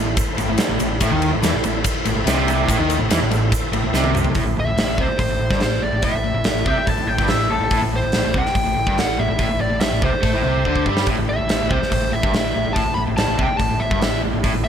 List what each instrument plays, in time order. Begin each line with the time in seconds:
Already playing: fingered electric bass A1, overdriven electric guitar A2, tonewheel organ E4 A4 C5
0.17 kick, ride, shaker
0.38 fingered electric bass A1, overdriven electric guitar A2, ride, shaker
0.48 fingered electric bass A1, overdriven electric guitar A2
0.58 muted fingered electric bass stroke, muted overdriven electric guitar stroke, muted distorted electric guitar stroke, snare, ride, shaker
0.69 fingered electric bass A1, overdriven electric guitar A2
0.79 fingered electric bass A1, overdriven electric guitar A2, ride, shaker
1.01 fingered electric bass A1, overdriven electric guitar A2, tonewheel organ E4 A4 C5, kick, ride, shaker
1.11 fingered electric bass D#2, overdriven electric guitar D#3
1.22 ride
1.32 fingered electric bass A1, overdriven electric guitar A2
1.42 fingered electric bass E2, overdriven electric guitar E3, snare, ride, shaker
1.53 fingered electric bass A1, overdriven electric guitar A2
1.63 fingered electric bass A1, overdriven electric guitar A2, ride, shaker
1.84 kick, ride, shaker
2.05 fingered electric bass A1, overdriven electric guitar A2, ride, shaker
2.15 fingered electric bass A1, overdriven electric guitar A2
2.25 fingered electric bass C2, overdriven electric guitar C3, snare, ride, shaker
2.48 ride, shaker
2.66 fingered electric bass A1, overdriven electric guitar A2, kick, ride
2.70 shaker
2.78 fingered electric bass D#2, overdriven electric guitar D#3
2.90 ride, shaker
2.98 fingered electric bass A1, overdriven electric guitar A2
3.10 fingered electric bass E2, overdriven electric guitar E3, snare, ride, shaker
3.20 fingered electric bass A1, overdriven electric guitar A2
3.31 fingered electric bass A1, overdriven electric guitar A2, ride, shaker
3.52 kick, ride, shaker
3.72 fingered electric bass A1, overdriven electric guitar A2, ride
3.83 fingered electric bass A1, overdriven electric guitar A2
3.93 fingered electric bass C2, overdriven electric guitar C3, snare, shaker
4.04 high tom
4.15 mid tom, shaker
4.24 floor tom
4.35 fingered electric bass A1, overdriven electric guitar A2, tonewheel organ E4 A4 C5, kick, open hi-hat
4.46 fingered electric bass A1, overdriven electric guitar A2
4.57 fingered electric bass A1, overdriven electric guitar A2, lead electric guitar E5
4.67 fingered electric bass A1, overdriven electric guitar A2
4.77 fingered electric bass A1, overdriven electric guitar A2, snare, open hi-hat
4.87 fingered electric bass A1, overdriven electric guitar A2
4.98 fingered electric bass C2, overdriven electric guitar C3, lead electric guitar C5, kick
5.08 muted overdriven electric guitar stroke, muted fingered electric bass stroke
5.18 fingered electric bass A1, overdriven electric guitar A2, lead electric guitar C5, kick, open hi-hat
5.29 fingered electric bass A1, overdriven electric guitar A2
5.39 fingered electric bass A1, overdriven electric guitar A2
5.50 fingered electric bass G1, overdriven electric guitar G2, kick, snare
5.60 fingered electric bass A1, overdriven electric guitar A2, lead electric guitar C5, snare, open hi-hat
5.81 fingered electric bass A1, overdriven electric guitar A2, lead electric guitar D5
5.93 fingered electric bass A1, overdriven electric guitar A2
6.02 fingered electric bass A1, overdriven electric guitar A2, lead electric guitar E5, kick, open hi-hat
6.14 fingered electric bass A1, overdriven electric guitar A2
6.24 fingered electric bass A1, overdriven electric guitar A2
6.34 fingered electric bass A1, overdriven electric guitar A2
6.44 fingered electric bass A1, overdriven electric guitar A2, snare, open hi-hat
6.54 fingered electric bass A1, overdriven electric guitar A2
6.66 fingered electric bass C2, overdriven electric guitar C3, lead electric guitar G5, kick
6.76 muted fingered electric bass stroke, muted overdriven electric guitar stroke
6.87 fingered electric bass A1, overdriven electric guitar A2, lead electric guitar A5, kick, open hi-hat
6.97 fingered electric bass A1, overdriven electric guitar A2
7.07 fingered electric bass A1, overdriven electric guitar A2, lead electric guitar G5
7.18 fingered electric bass G1, overdriven electric guitar G2, kick, snare
7.28 fingered electric bass A1, overdriven electric guitar A2, lead electric guitar E5, snare, open hi-hat
7.50 fingered electric bass A1, overdriven electric guitar A2, lead electric guitar A4
7.60 fingered electric bass A1, overdriven electric guitar A2
7.71 fingered electric bass A1, overdriven electric guitar A2, tonewheel organ A4 C5 E5, kick, open hi-hat
7.82 fingered electric bass A1, overdriven electric guitar A2
7.93 fingered electric bass A1, overdriven electric guitar A2, lead electric guitar C5
8.03 fingered electric bass A1, overdriven electric guitar A2
8.12 fingered electric bass A1, overdriven electric guitar A2, snare, open hi-hat
8.25 fingered electric bass A1, overdriven electric guitar A2
8.34 fingered electric bass C2, overdriven electric guitar C3, lead electric guitar G5, kick
8.46 muted fingered electric bass stroke, muted overdriven electric guitar stroke, snare
8.55 fingered electric bass A1, overdriven electric guitar A2, kick, open hi-hat
8.67 fingered electric bass A1, overdriven electric guitar A2
8.77 fingered electric bass A1, overdriven electric guitar A2
8.86 fingered electric bass G1, overdriven electric guitar G2, kick
8.98 fingered electric bass A1, overdriven electric guitar A2, lead electric guitar F#5, snare, open hi-hat
9.18 fingered electric bass A1, overdriven electric guitar A2, lead electric guitar E5
9.28 fingered electric bass A1, overdriven electric guitar A2
9.39 fingered electric bass A1, overdriven electric guitar A2, kick, open hi-hat
9.49 fingered electric bass A1, overdriven electric guitar A2
9.60 fingered electric bass A1, overdriven electric guitar A2, lead electric guitar D5
9.70 fingered electric bass A1, overdriven electric guitar A2
9.81 fingered electric bass A1, overdriven electric guitar A2, lead electric guitar E5, snare, open hi-hat
9.92 fingered electric bass A1, overdriven electric guitar A2
10.02 fingered electric bass C2, overdriven electric guitar C3, lead electric guitar C5, kick
10.13 muted overdriven electric guitar stroke, muted fingered electric bass stroke
10.23 fingered electric bass A2, overdriven electric guitar A3, kick, open hi-hat
10.33 fingered electric bass A1, overdriven electric guitar A2
10.44 fingered electric bass C2, overdriven electric guitar C3
10.65 fingered electric bass D2, overdriven electric guitar D3, kick
10.76 kick
10.86 fingered electric bass G2, overdriven electric guitar G3, kick
10.97 snare
11.06 fingered electric bass A1, overdriven electric guitar A2, tonewheel organ C5 E5 A5, kick, open hi-hat
11.18 fingered electric bass A1, overdriven electric guitar A2
11.28 fingered electric bass A1, overdriven electric guitar A2, lead electric guitar E5
11.38 fingered electric bass A1, overdriven electric guitar A2
11.49 fingered electric bass A1, overdriven electric guitar A2, snare, open hi-hat
11.59 fingered electric bass A1, overdriven electric guitar A2
11.70 fingered electric bass C2, overdriven electric guitar C3, lead electric guitar C5, kick
11.81 muted overdriven electric guitar stroke, muted fingered electric bass stroke, snare
11.91 fingered electric bass A1, overdriven electric guitar A2, lead electric guitar C5, kick, open hi-hat
12.02 fingered electric bass A1, overdriven electric guitar A2
12.12 fingered electric bass A1, overdriven electric guitar A2, lead electric guitar E5
12.23 fingered electric bass G1, overdriven electric guitar G2, kick
12.34 fingered electric bass A1, overdriven electric guitar A2, snare, open hi-hat
12.55 fingered electric bass A1, overdriven electric guitar A2
12.65 fingered electric bass A1, overdriven electric guitar A2
12.73 fingered electric bass A1, overdriven electric guitar A2, lead electric guitar A5, kick, open hi-hat
12.86 fingered electric bass A1, overdriven electric guitar A2
12.94 fingered electric bass A1, overdriven electric guitar A2, lead electric guitar B5
13.08 fingered electric bass A1, overdriven electric guitar A2
13.17 fingered electric bass A1, overdriven electric guitar A2, lead electric guitar A5, snare, open hi-hat
13.28 fingered electric bass A1, overdriven electric guitar A2
13.39 fingered electric bass C2, overdriven electric guitar C3, kick
13.43 lead electric guitar G5
13.49 muted fingered electric bass stroke, muted overdriven electric guitar stroke
13.57 fingered electric bass A1, overdriven electric guitar A2, lead electric guitar A5, kick, open hi-hat
13.69 fingered electric bass A1, overdriven electric guitar A2
13.80 fingered electric bass A1, overdriven electric guitar A2, lead electric guitar E5
13.90 fingered electric bass G1, overdriven electric guitar G2, kick
14.02 fingered electric bass A1, overdriven electric guitar A2, snare, open hi-hat
14.23 fingered electric bass A1, overdriven electric guitar A2
14.34 fingered electric bass A1, overdriven electric guitar A2
14.44 fingered electric bass A1, overdriven electric guitar A2, tonewheel organ C4 E5 A5, kick, open hi-hat
14.55 fingered electric bass A1, overdriven electric guitar A2
14.64 overdriven electric guitar A2, lead electric guitar E5